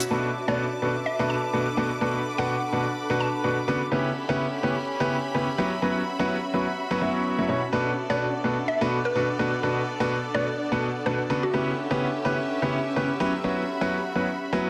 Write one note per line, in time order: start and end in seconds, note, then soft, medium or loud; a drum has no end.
0.00 0.11 C#4 medium
0.00 1.17 F#4 medium
0.00 1.34 E5 medium
0.00 11.54 B5 medium
0.00 closed hi-hat medium
0.00 cabasa medium
0.10 0.28 B2 medium
0.10 0.28 B3 medium
0.10 3.92 D4 medium
0.10 0.28 D4 medium
0.10 0.28 F#4 medium
0.10 0.28 A4 medium
0.10 3.88 B4 medium
0.10 0.28 B4 medium
0.10 1.99 A5 medium
0.10 3.88 D6 medium
0.48 0.63 B2 medium
0.48 0.63 B3 medium
0.48 0.63 D4 medium
0.48 0.63 F#4 medium
0.48 0.63 A4 medium
0.48 0.63 B4 loud
0.48 0.63 D5 medium
0.64 4.68 A4 medium
0.82 0.93 B2 medium
0.82 0.93 B3 medium
0.82 0.93 D4 medium
0.82 0.93 F#4 medium
0.82 0.93 A4 medium
0.82 0.93 B4 medium
1.06 1.23 E5 medium
1.19 1.34 B2 medium
1.19 1.34 B3 medium
1.19 1.34 D4 medium
1.19 1.34 F#4 medium
1.19 1.34 A4 medium
1.19 1.34 B4 loud
1.30 1.47 A5 medium
1.37 4.69 F#5 medium
1.53 1.65 B2 medium
1.53 1.65 B3 medium
1.53 1.65 D4 medium
1.53 1.65 F#4 medium
1.53 1.65 A4 medium
1.53 1.65 B4 medium
1.77 1.89 B2 medium
1.77 1.89 B3 medium
1.77 1.89 D4 medium
1.77 1.89 F#4 medium
1.77 1.89 A4 medium
1.77 1.89 B4 medium
2.01 2.18 B2 medium
2.01 2.18 B3 medium
2.01 2.18 D4 medium
2.01 2.18 F#4 medium
2.01 2.18 A4 medium
2.01 2.18 B4 medium
2.01 3.90 B5 medium
2.38 2.53 B2 medium
2.38 2.54 B3 medium
2.38 2.53 D4 medium
2.38 2.53 F#4 medium
2.38 2.54 A4 medium
2.38 2.54 B4 loud
2.38 3.04 F#5 medium
2.73 2.84 B2 medium
2.73 2.84 B3 medium
2.73 2.84 D4 medium
2.73 2.84 F#4 medium
2.73 2.84 A4 medium
2.73 2.84 B4 medium
3.10 3.25 B2 medium
3.10 3.25 B3 medium
3.10 3.25 D4 medium
3.10 3.25 F#4 medium
3.10 3.25 A4 medium
3.10 3.25 B4 loud
3.20 3.88 A5 medium
3.44 3.55 B2 medium
3.44 3.55 B3 medium
3.44 3.55 D4 medium
3.44 3.55 F#4 medium
3.44 3.55 A4 medium
3.44 3.55 B4 medium
3.68 3.79 C#3 medium
3.68 3.79 B3 medium
3.68 3.79 D4 medium
3.68 3.79 F#4 medium
3.68 3.79 A4 medium
3.68 3.79 B4 loud
3.92 4.09 C#3 medium
3.92 4.09 B3 medium
3.92 4.09 C#4 medium
3.92 7.73 C#4 medium
3.92 5.80 C#4 medium
3.92 4.09 E4 medium
3.92 4.09 G4 medium
3.92 5.80 G4 medium
3.92 4.09 B4 medium
3.92 7.69 E5 medium
3.92 7.69 B5 medium
4.29 4.44 C#3 medium
4.29 4.44 B3 medium
4.29 4.44 C#4 medium
4.29 4.44 E4 medium
4.29 4.44 G4 medium
4.29 4.44 B4 loud
4.34 5.82 G4 medium
4.61 4.74 C#3 medium
4.61 4.74 B3 medium
4.61 4.74 C#4 medium
4.61 4.74 E4 medium
4.61 4.74 G4 medium
4.61 4.74 B4 medium
4.61 9.26 E5 medium
5.00 5.15 C#3 medium
5.00 5.15 B3 medium
5.00 5.15 C#4 medium
5.00 5.15 E4 medium
5.00 5.15 G4 medium
5.00 5.15 B4 loud
5.35 5.46 C#3 medium
5.35 5.46 B3 medium
5.35 5.46 C#4 medium
5.35 5.46 E4 medium
5.35 5.46 G4 medium
5.35 5.46 B4 medium
5.58 5.70 F#3 medium
5.58 5.70 B3 medium
5.58 5.70 C#4 medium
5.58 5.70 E4 medium
5.58 5.70 G4 medium
5.58 5.70 B4 loud
5.82 5.99 F#3 medium
5.82 5.99 B3 medium
5.82 5.99 C#4 medium
5.82 5.99 E4 medium
5.82 7.71 F#4 medium
5.82 5.99 F#4 medium
5.82 5.99 B4 medium
6.15 9.26 F#4 medium
6.19 6.34 F#3 medium
6.19 6.34 B3 medium
6.19 6.34 C#4 medium
6.19 6.34 E4 medium
6.19 6.34 F#4 medium
6.19 6.34 B4 loud
6.54 6.65 F#3 medium
6.54 6.65 B3 medium
6.54 6.65 C#4 medium
6.54 6.65 E4 medium
6.54 6.65 F#4 medium
6.54 6.65 B4 medium
6.91 6.99 F#3 medium
6.91 6.99 B3 medium
6.91 6.99 C#4 medium
6.91 6.99 E4 medium
6.91 6.99 F#4 medium
6.91 6.99 B4 loud
7.01 7.35 F#3 medium
7.01 7.35 B3 medium
7.01 7.35 C#4 medium
7.01 7.35 E4 medium
7.01 7.35 F#4 medium
7.01 7.35 E5 medium
7.38 7.47 F#3 medium
7.38 7.47 B3 medium
7.38 7.47 C#4 medium
7.38 7.47 E4 medium
7.38 7.47 F#4 medium
7.38 7.47 C#5 medium
7.49 7.60 B2 medium
7.49 7.60 B3 medium
7.49 7.60 C#4 medium
7.49 7.60 E4 medium
7.49 7.60 F#4 medium
7.49 7.60 C#5 medium
7.72 7.90 B2 medium
7.72 11.50 B3 medium
7.72 7.90 B3 medium
7.72 11.54 D4 medium
7.72 7.90 D4 medium
7.72 7.90 F#4 medium
7.72 11.50 A4 medium
7.72 7.90 A4 medium
7.72 7.90 B4 medium
7.72 11.50 D5 medium
7.82 12.30 A4 medium
8.10 8.25 B2 medium
8.10 8.25 B3 medium
8.10 8.25 D4 medium
8.10 8.25 F#4 medium
8.10 8.25 A4 medium
8.10 8.25 B4 loud
8.10 8.25 D5 medium
8.31 12.30 F#5 medium
8.44 8.55 B2 medium
8.44 8.55 B3 medium
8.44 8.55 D4 medium
8.44 8.55 F#4 medium
8.44 8.55 A4 medium
8.44 8.55 B4 medium
8.68 8.85 E5 medium
8.81 8.96 B2 medium
8.81 8.96 B3 medium
8.81 8.96 D4 medium
8.81 8.96 F#4 medium
8.81 8.96 A4 medium
8.81 8.96 B4 loud
9.05 9.20 B4 medium
9.15 9.27 B2 medium
9.15 9.27 B3 medium
9.15 9.27 D4 medium
9.15 9.27 F#4 medium
9.15 9.27 A4 medium
9.15 9.27 B4 medium
9.39 9.51 B2 medium
9.39 9.51 B3 medium
9.39 9.51 D4 medium
9.39 9.51 F#4 medium
9.39 9.51 A4 medium
9.39 9.51 B4 medium
9.63 9.80 B2 medium
9.63 9.80 B3 medium
9.63 9.80 D4 medium
9.63 9.80 F#4 medium
9.63 9.80 A4 medium
9.63 9.80 B4 medium
10.00 10.15 B2 medium
10.00 10.15 B3 medium
10.00 10.15 D4 medium
10.00 10.15 F#4 medium
10.00 10.15 A4 medium
10.00 10.15 B4 loud
10.34 10.46 B2 medium
10.34 10.46 B3 medium
10.34 10.46 D4 medium
10.34 10.46 F#4 medium
10.34 10.46 A4 medium
10.34 10.46 B4 medium
10.34 10.51 D5 medium
10.72 10.87 B2 medium
10.72 10.87 B3 medium
10.72 10.87 D4 medium
10.72 10.87 F#4 medium
10.72 10.87 A4 medium
10.72 10.87 B4 loud
11.06 11.17 B2 medium
11.06 11.17 B3 medium
11.06 11.17 D4 medium
11.06 11.17 F#4 medium
11.06 11.17 A4 medium
11.06 11.23 B4 medium
11.06 11.17 B4 medium
11.30 11.41 C#3 medium
11.30 11.41 B3 medium
11.30 11.41 D4 medium
11.30 11.41 F#4 medium
11.30 11.41 A4 medium
11.30 11.41 B4 loud
11.43 11.59 F#4 medium
11.54 11.71 C#3 medium
11.54 11.71 B3 medium
11.54 11.71 C#4 medium
11.54 14.70 C#4 medium
11.54 13.42 C#4 medium
11.54 11.71 E4 medium
11.54 11.71 G4 medium
11.54 13.42 G4 medium
11.54 11.71 B4 medium
11.54 13.42 B4 medium
11.54 14.70 E5 medium
11.91 12.06 C#3 loud
11.91 12.06 B3 medium
11.91 12.06 C#4 medium
11.91 12.06 E4 medium
11.91 12.06 G4 medium
11.91 12.06 B4 loud
12.11 13.44 G4 medium
12.25 12.36 C#3 medium
12.25 12.36 B3 medium
12.25 12.36 C#4 medium
12.25 12.36 E4 medium
12.25 12.36 G4 medium
12.25 12.36 B4 medium
12.25 14.70 E5 medium
12.41 14.70 B5 medium
12.62 12.77 C#3 medium
12.62 12.77 B3 medium
12.62 12.77 C#4 medium
12.62 12.77 E4 medium
12.62 12.77 G4 medium
12.62 12.77 B4 medium
12.96 13.08 C#3 medium
12.96 13.08 B3 medium
12.96 13.08 C#4 medium
12.96 13.08 E4 medium
12.96 13.08 G4 medium
12.96 13.08 B4 medium
13.20 13.32 F#3 medium
13.20 13.31 B3 medium
13.20 13.31 C#4 medium
13.20 13.32 E4 medium
13.20 13.32 G4 medium
13.20 13.32 B4 loud
13.44 13.61 F#3 medium
13.44 13.61 B3 medium
13.44 13.61 C#4 medium
13.44 13.61 E4 medium
13.44 14.70 F#4 medium
13.44 13.61 F#4 medium
13.44 13.61 B4 medium
13.44 14.70 B5 medium
13.81 13.96 F#3 medium
13.81 13.96 B3 medium
13.81 13.96 C#4 medium
13.81 13.96 E4 medium
13.81 13.96 F#4 medium
13.81 13.96 B4 loud
14.15 14.27 F#3 medium
14.15 14.27 B3 medium
14.15 14.27 C#4 medium
14.15 14.27 E4 medium
14.15 14.27 F#4 medium
14.15 14.27 B4 medium
14.53 14.68 F#3 loud
14.53 14.68 B3 medium
14.53 14.68 C#4 medium
14.53 14.68 E4 medium
14.53 14.68 F#4 medium
14.53 14.68 B4 loud